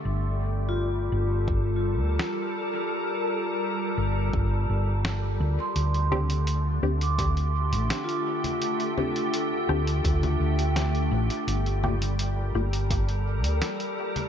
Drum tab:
HH |----------------|----------------|xx-xx--xxx-xxx-x|xx-xx--xxx-xxx-x|
SD |------------o---|------------o---|------------o---|------------o---|
CG |----------------|----------------|--O------------O|--O------O------|
BD |--------o-------|--------o-------|--------o-------|--------o-------|

HH |xx-xx--xxx-xxx-x|
SD |------------o---|
CG |--O------------O|
BD |--------o-------|